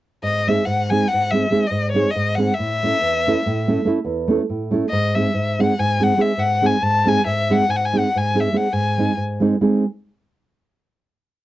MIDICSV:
0, 0, Header, 1, 3, 480
1, 0, Start_track
1, 0, Tempo, 425834
1, 259, Time_signature, 11, 3, 24, 8
1, 12899, End_track
2, 0, Start_track
2, 0, Title_t, "Violin"
2, 0, Program_c, 0, 40
2, 272, Note_on_c, 0, 75, 87
2, 538, Note_on_c, 0, 76, 74
2, 555, Note_off_c, 0, 75, 0
2, 734, Note_on_c, 0, 78, 76
2, 751, Note_off_c, 0, 76, 0
2, 1019, Note_on_c, 0, 80, 77
2, 1036, Note_off_c, 0, 78, 0
2, 1220, Note_on_c, 0, 78, 89
2, 1237, Note_off_c, 0, 80, 0
2, 1476, Note_on_c, 0, 76, 79
2, 1493, Note_off_c, 0, 78, 0
2, 1882, Note_on_c, 0, 75, 73
2, 1898, Note_off_c, 0, 76, 0
2, 2156, Note_off_c, 0, 75, 0
2, 2163, Note_on_c, 0, 73, 76
2, 2376, Note_on_c, 0, 75, 81
2, 2393, Note_off_c, 0, 73, 0
2, 2655, Note_on_c, 0, 78, 77
2, 2672, Note_off_c, 0, 75, 0
2, 2873, Note_on_c, 0, 76, 98
2, 2890, Note_off_c, 0, 78, 0
2, 4322, Note_off_c, 0, 76, 0
2, 5523, Note_on_c, 0, 75, 95
2, 5806, Note_on_c, 0, 76, 80
2, 5823, Note_off_c, 0, 75, 0
2, 6320, Note_on_c, 0, 78, 77
2, 6337, Note_off_c, 0, 76, 0
2, 6531, Note_on_c, 0, 80, 84
2, 6548, Note_off_c, 0, 78, 0
2, 6805, Note_on_c, 0, 78, 80
2, 6822, Note_off_c, 0, 80, 0
2, 7001, Note_on_c, 0, 76, 77
2, 7018, Note_off_c, 0, 78, 0
2, 7208, Note_on_c, 0, 78, 88
2, 7225, Note_off_c, 0, 76, 0
2, 7509, Note_on_c, 0, 80, 78
2, 7526, Note_off_c, 0, 78, 0
2, 7700, Note_on_c, 0, 81, 89
2, 7717, Note_off_c, 0, 80, 0
2, 7986, Note_on_c, 0, 80, 91
2, 8003, Note_off_c, 0, 81, 0
2, 8183, Note_off_c, 0, 80, 0
2, 8195, Note_on_c, 0, 76, 82
2, 8475, Note_on_c, 0, 78, 90
2, 8491, Note_off_c, 0, 76, 0
2, 8688, Note_on_c, 0, 80, 72
2, 8705, Note_off_c, 0, 78, 0
2, 8752, Note_on_c, 0, 78, 71
2, 8769, Note_off_c, 0, 80, 0
2, 8852, Note_on_c, 0, 80, 75
2, 8869, Note_off_c, 0, 78, 0
2, 9007, Note_on_c, 0, 78, 75
2, 9023, Note_off_c, 0, 80, 0
2, 9220, Note_on_c, 0, 80, 77
2, 9237, Note_off_c, 0, 78, 0
2, 9474, Note_on_c, 0, 76, 67
2, 9491, Note_off_c, 0, 80, 0
2, 9660, Note_on_c, 0, 78, 70
2, 9677, Note_off_c, 0, 76, 0
2, 9845, Note_on_c, 0, 80, 77
2, 9861, Note_off_c, 0, 78, 0
2, 10331, Note_off_c, 0, 80, 0
2, 12899, End_track
3, 0, Start_track
3, 0, Title_t, "Nylon-string guitar"
3, 0, Program_c, 1, 24
3, 254, Note_on_c, 1, 44, 47
3, 531, Note_on_c, 1, 56, 50
3, 544, Note_on_c, 1, 60, 52
3, 544, Note_on_c, 1, 63, 51
3, 558, Note_on_c, 1, 68, 52
3, 636, Note_off_c, 1, 44, 0
3, 688, Note_off_c, 1, 56, 0
3, 694, Note_off_c, 1, 63, 0
3, 695, Note_off_c, 1, 60, 0
3, 702, Note_off_c, 1, 68, 0
3, 746, Note_on_c, 1, 44, 59
3, 1020, Note_on_c, 1, 56, 57
3, 1033, Note_on_c, 1, 60, 51
3, 1039, Note_on_c, 1, 68, 62
3, 1040, Note_on_c, 1, 63, 42
3, 1129, Note_off_c, 1, 44, 0
3, 1180, Note_off_c, 1, 56, 0
3, 1187, Note_off_c, 1, 60, 0
3, 1188, Note_off_c, 1, 68, 0
3, 1189, Note_off_c, 1, 63, 0
3, 1277, Note_on_c, 1, 44, 53
3, 1485, Note_on_c, 1, 56, 55
3, 1503, Note_on_c, 1, 60, 50
3, 1509, Note_on_c, 1, 63, 45
3, 1515, Note_on_c, 1, 68, 54
3, 1608, Note_off_c, 1, 44, 0
3, 1637, Note_off_c, 1, 56, 0
3, 1645, Note_off_c, 1, 60, 0
3, 1649, Note_off_c, 1, 63, 0
3, 1651, Note_off_c, 1, 68, 0
3, 1696, Note_on_c, 1, 56, 56
3, 1705, Note_on_c, 1, 60, 50
3, 1716, Note_on_c, 1, 63, 47
3, 1716, Note_on_c, 1, 68, 64
3, 1844, Note_off_c, 1, 56, 0
3, 1849, Note_off_c, 1, 60, 0
3, 1853, Note_off_c, 1, 68, 0
3, 1854, Note_off_c, 1, 63, 0
3, 1923, Note_on_c, 1, 44, 59
3, 2187, Note_on_c, 1, 56, 62
3, 2193, Note_on_c, 1, 60, 51
3, 2204, Note_on_c, 1, 63, 57
3, 2211, Note_on_c, 1, 68, 66
3, 2294, Note_off_c, 1, 44, 0
3, 2338, Note_off_c, 1, 56, 0
3, 2342, Note_off_c, 1, 60, 0
3, 2347, Note_off_c, 1, 63, 0
3, 2351, Note_off_c, 1, 68, 0
3, 2428, Note_on_c, 1, 44, 56
3, 2675, Note_on_c, 1, 56, 66
3, 2689, Note_on_c, 1, 60, 58
3, 2696, Note_on_c, 1, 68, 66
3, 2703, Note_on_c, 1, 63, 55
3, 2794, Note_off_c, 1, 44, 0
3, 2829, Note_off_c, 1, 56, 0
3, 2836, Note_off_c, 1, 60, 0
3, 2840, Note_off_c, 1, 68, 0
3, 2843, Note_off_c, 1, 63, 0
3, 2921, Note_on_c, 1, 45, 60
3, 3189, Note_on_c, 1, 57, 53
3, 3201, Note_on_c, 1, 61, 52
3, 3205, Note_on_c, 1, 64, 47
3, 3217, Note_on_c, 1, 69, 51
3, 3287, Note_off_c, 1, 45, 0
3, 3333, Note_off_c, 1, 57, 0
3, 3340, Note_off_c, 1, 61, 0
3, 3340, Note_off_c, 1, 64, 0
3, 3347, Note_off_c, 1, 69, 0
3, 3392, Note_on_c, 1, 40, 58
3, 3685, Note_on_c, 1, 57, 64
3, 3695, Note_on_c, 1, 61, 66
3, 3695, Note_on_c, 1, 64, 69
3, 3704, Note_on_c, 1, 69, 76
3, 3769, Note_off_c, 1, 40, 0
3, 3828, Note_off_c, 1, 57, 0
3, 3832, Note_off_c, 1, 64, 0
3, 3833, Note_off_c, 1, 61, 0
3, 3838, Note_off_c, 1, 69, 0
3, 3900, Note_on_c, 1, 45, 71
3, 4143, Note_on_c, 1, 57, 69
3, 4150, Note_on_c, 1, 61, 59
3, 4154, Note_on_c, 1, 64, 65
3, 4161, Note_on_c, 1, 69, 66
3, 4235, Note_off_c, 1, 45, 0
3, 4281, Note_off_c, 1, 57, 0
3, 4285, Note_off_c, 1, 61, 0
3, 4286, Note_off_c, 1, 64, 0
3, 4290, Note_off_c, 1, 69, 0
3, 4340, Note_on_c, 1, 57, 72
3, 4346, Note_on_c, 1, 61, 56
3, 4362, Note_on_c, 1, 64, 66
3, 4365, Note_on_c, 1, 69, 74
3, 4482, Note_off_c, 1, 57, 0
3, 4485, Note_off_c, 1, 61, 0
3, 4493, Note_off_c, 1, 64, 0
3, 4494, Note_off_c, 1, 69, 0
3, 4560, Note_on_c, 1, 40, 68
3, 4822, Note_on_c, 1, 57, 77
3, 4835, Note_on_c, 1, 61, 69
3, 4849, Note_on_c, 1, 64, 66
3, 4852, Note_on_c, 1, 69, 78
3, 4929, Note_off_c, 1, 40, 0
3, 4972, Note_off_c, 1, 57, 0
3, 4978, Note_off_c, 1, 61, 0
3, 4986, Note_off_c, 1, 64, 0
3, 4986, Note_off_c, 1, 69, 0
3, 5066, Note_on_c, 1, 45, 62
3, 5309, Note_on_c, 1, 57, 68
3, 5318, Note_on_c, 1, 61, 70
3, 5326, Note_on_c, 1, 64, 70
3, 5338, Note_on_c, 1, 69, 84
3, 5429, Note_off_c, 1, 45, 0
3, 5463, Note_off_c, 1, 57, 0
3, 5468, Note_off_c, 1, 61, 0
3, 5470, Note_off_c, 1, 64, 0
3, 5477, Note_off_c, 1, 69, 0
3, 5546, Note_on_c, 1, 44, 60
3, 5804, Note_on_c, 1, 56, 46
3, 5816, Note_on_c, 1, 60, 46
3, 5824, Note_on_c, 1, 63, 47
3, 5840, Note_on_c, 1, 68, 58
3, 5916, Note_off_c, 1, 44, 0
3, 5958, Note_off_c, 1, 56, 0
3, 5964, Note_off_c, 1, 60, 0
3, 5968, Note_off_c, 1, 63, 0
3, 5976, Note_off_c, 1, 68, 0
3, 6020, Note_on_c, 1, 44, 58
3, 6301, Note_on_c, 1, 56, 54
3, 6307, Note_on_c, 1, 60, 52
3, 6310, Note_on_c, 1, 63, 56
3, 6326, Note_on_c, 1, 68, 65
3, 6400, Note_off_c, 1, 44, 0
3, 6455, Note_off_c, 1, 56, 0
3, 6455, Note_off_c, 1, 60, 0
3, 6459, Note_off_c, 1, 63, 0
3, 6466, Note_off_c, 1, 68, 0
3, 6525, Note_on_c, 1, 44, 62
3, 6757, Note_on_c, 1, 56, 50
3, 6762, Note_on_c, 1, 60, 53
3, 6769, Note_on_c, 1, 63, 44
3, 6773, Note_on_c, 1, 68, 67
3, 6866, Note_off_c, 1, 44, 0
3, 6907, Note_off_c, 1, 56, 0
3, 6909, Note_off_c, 1, 60, 0
3, 6913, Note_off_c, 1, 68, 0
3, 6914, Note_off_c, 1, 63, 0
3, 6956, Note_on_c, 1, 56, 65
3, 6962, Note_on_c, 1, 60, 50
3, 6971, Note_on_c, 1, 63, 57
3, 6976, Note_on_c, 1, 68, 65
3, 7109, Note_off_c, 1, 56, 0
3, 7112, Note_off_c, 1, 60, 0
3, 7116, Note_off_c, 1, 63, 0
3, 7119, Note_off_c, 1, 68, 0
3, 7182, Note_on_c, 1, 44, 54
3, 7458, Note_on_c, 1, 56, 64
3, 7464, Note_on_c, 1, 63, 59
3, 7466, Note_on_c, 1, 60, 62
3, 7474, Note_on_c, 1, 68, 57
3, 7560, Note_off_c, 1, 44, 0
3, 7610, Note_off_c, 1, 56, 0
3, 7613, Note_off_c, 1, 63, 0
3, 7614, Note_off_c, 1, 60, 0
3, 7618, Note_off_c, 1, 68, 0
3, 7685, Note_on_c, 1, 44, 51
3, 7945, Note_on_c, 1, 56, 63
3, 7958, Note_on_c, 1, 60, 61
3, 7964, Note_on_c, 1, 63, 61
3, 7976, Note_on_c, 1, 68, 72
3, 8060, Note_off_c, 1, 44, 0
3, 8102, Note_off_c, 1, 56, 0
3, 8110, Note_off_c, 1, 60, 0
3, 8111, Note_off_c, 1, 63, 0
3, 8118, Note_off_c, 1, 68, 0
3, 8177, Note_on_c, 1, 44, 56
3, 8453, Note_on_c, 1, 56, 54
3, 8457, Note_on_c, 1, 60, 48
3, 8464, Note_on_c, 1, 63, 49
3, 8464, Note_on_c, 1, 68, 49
3, 8555, Note_off_c, 1, 44, 0
3, 8605, Note_off_c, 1, 56, 0
3, 8606, Note_off_c, 1, 60, 0
3, 8608, Note_off_c, 1, 63, 0
3, 8610, Note_off_c, 1, 68, 0
3, 8662, Note_on_c, 1, 44, 56
3, 8940, Note_on_c, 1, 56, 55
3, 8945, Note_on_c, 1, 63, 46
3, 8954, Note_on_c, 1, 60, 45
3, 8962, Note_on_c, 1, 68, 67
3, 9045, Note_off_c, 1, 44, 0
3, 9097, Note_off_c, 1, 56, 0
3, 9100, Note_off_c, 1, 63, 0
3, 9104, Note_off_c, 1, 60, 0
3, 9108, Note_off_c, 1, 68, 0
3, 9191, Note_on_c, 1, 44, 54
3, 9406, Note_on_c, 1, 56, 49
3, 9412, Note_on_c, 1, 60, 47
3, 9416, Note_on_c, 1, 63, 54
3, 9425, Note_on_c, 1, 68, 67
3, 9525, Note_off_c, 1, 44, 0
3, 9557, Note_off_c, 1, 56, 0
3, 9558, Note_off_c, 1, 60, 0
3, 9561, Note_off_c, 1, 63, 0
3, 9565, Note_off_c, 1, 68, 0
3, 9605, Note_on_c, 1, 56, 51
3, 9618, Note_on_c, 1, 60, 49
3, 9623, Note_on_c, 1, 63, 53
3, 9628, Note_on_c, 1, 68, 66
3, 9758, Note_off_c, 1, 56, 0
3, 9765, Note_off_c, 1, 60, 0
3, 9766, Note_off_c, 1, 63, 0
3, 9770, Note_off_c, 1, 68, 0
3, 9838, Note_on_c, 1, 44, 52
3, 10122, Note_on_c, 1, 56, 58
3, 10129, Note_on_c, 1, 60, 52
3, 10140, Note_on_c, 1, 63, 59
3, 10142, Note_on_c, 1, 68, 63
3, 10213, Note_off_c, 1, 44, 0
3, 10267, Note_off_c, 1, 56, 0
3, 10271, Note_off_c, 1, 60, 0
3, 10277, Note_off_c, 1, 63, 0
3, 10277, Note_off_c, 1, 68, 0
3, 10335, Note_on_c, 1, 44, 45
3, 10596, Note_on_c, 1, 56, 75
3, 10611, Note_on_c, 1, 60, 75
3, 10617, Note_on_c, 1, 63, 70
3, 10626, Note_on_c, 1, 68, 76
3, 10711, Note_off_c, 1, 44, 0
3, 10754, Note_off_c, 1, 56, 0
3, 10761, Note_off_c, 1, 60, 0
3, 10764, Note_off_c, 1, 63, 0
3, 10768, Note_off_c, 1, 68, 0
3, 10833, Note_on_c, 1, 56, 66
3, 10835, Note_on_c, 1, 60, 61
3, 10838, Note_on_c, 1, 63, 59
3, 10843, Note_on_c, 1, 68, 71
3, 11089, Note_off_c, 1, 60, 0
3, 11090, Note_off_c, 1, 56, 0
3, 11091, Note_off_c, 1, 68, 0
3, 11092, Note_off_c, 1, 63, 0
3, 12899, End_track
0, 0, End_of_file